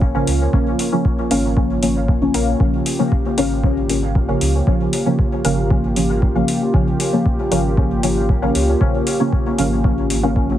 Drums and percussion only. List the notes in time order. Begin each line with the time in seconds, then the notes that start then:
0.02 kick
0.27 open hi-hat
0.53 kick
0.79 open hi-hat
1.05 kick
1.31 open hi-hat
1.57 kick
1.83 open hi-hat
2.08 kick
2.34 open hi-hat
2.60 kick
2.86 open hi-hat
3.12 kick
3.38 open hi-hat
3.64 kick
3.90 open hi-hat
4.15 kick
4.41 open hi-hat
4.67 kick
4.93 open hi-hat
5.19 kick
5.45 open hi-hat
5.71 kick
5.96 open hi-hat
6.22 kick
6.48 open hi-hat
6.74 kick
7.00 open hi-hat
7.26 kick
7.52 open hi-hat
7.77 kick
8.03 open hi-hat
8.29 kick
8.55 open hi-hat
8.81 kick
9.07 open hi-hat
9.33 kick
9.58 open hi-hat
9.84 kick
10.10 open hi-hat
10.36 kick